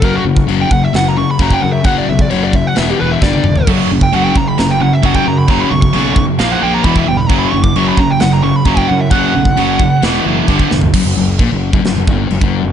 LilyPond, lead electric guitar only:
\new Staff \with { instrumentName = "Lead electric guitar" } { \time 4/4 \tempo 4 = 132 ais'16 fis'16 r8. g''16 fis''16 e''16 fis''16 ais''16 cis'''16 b''16 ais''16 g''16 fis''16 e''16 | fis''16 d''16 e''16 d''16 cis''16 d''16 e''16 fis''16 e''16 g'16 b'16 e''16 d''4 | r8. g''16 fis''16 g''16 ais''16 b''16 ais''16 g''16 fis''16 e''16 fis''16 g''16 ais''16 b''16 | ais''16 b''16 cis'''16 cis'''4 r16 eis''16 fis''16 g''16 ais''16 b''16 e''16 g''16 b''16 |
ais''16 b''16 cis'''16 d'''16 cis'''16 b''16 ais''16 g''16 fis''16 ais''16 cis'''16 b''16 ais''16 g''16 fis''16 e''16 | fis''2 r2 | r1 | }